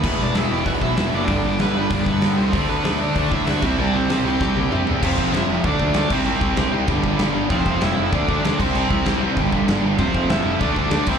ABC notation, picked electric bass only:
X:1
M:4/4
L:1/8
Q:1/4=193
K:G
V:1 name="Picked electric bass" clef=bass
E,,, E,,, E,,, E,,, E,,, B,,, E,,, F,,, | G,,, G,,, G,,, G,,, G,,, G,,, G,, C,, | D,, D,, D,, D,, D,, A,, D,, C,, | C,, C,, C,, C,, C,, C,, C, E,, |
=F,,, F,,, F,,, F,,, D,, D,, D,, C,, | C,, C,, C,, C,, G,,, G,,, G,,, G,,, | =F,,, F,,, F,,, F,,, D,, D,, D,, C,, | C,, C,, C,, A,,, G,,, G,,, G,,, G,,, |
=F,,, F,,, F,,, F,,, D,, D,, D,, C,, |]